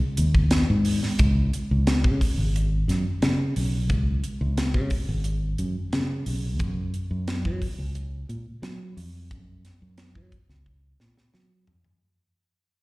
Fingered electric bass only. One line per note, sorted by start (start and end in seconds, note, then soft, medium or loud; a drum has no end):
0.18 0.64 D#2 medium
0.70 1.00 G#2 medium
1.20 1.50 C#2 medium
1.71 2.06 C#2 medium
2.04 2.19 C#3 medium
2.21 muted fingered electric bass stroke soft
2.38 2.83 G#1 medium
2.88 3.04 F#2 medium
3.23 3.53 C#3 medium
3.56 3.90 B1 medium
3.90 4.20 C#2 medium
4.41 4.76 C#2 medium
4.74 4.89 C#3 medium
4.91 muted fingered electric bass stroke soft
5.09 5.54 G#1 medium
5.59 5.74 F#2 medium
5.93 6.23 C#3 medium
6.26 6.60 B1 medium
6.60 6.90 F#2 medium
7.11 7.47 F#2 medium
7.45 7.60 F#3 medium
7.62 muted fingered electric bass stroke soft
7.79 8.24 C#2 medium
8.29 8.45 A#2 medium
8.62 8.93 F#3 medium
8.97 9.32 F2 medium
9.32 9.62 F#2 medium
9.82 10.17 F#2 medium
10.16 10.31 F#3 medium
10.32 muted fingered electric bass stroke soft
10.49 10.95 C#2 medium
11.00 11.15 A#2 medium
11.34 11.64 F#3 medium
11.68 11.83 F2 medium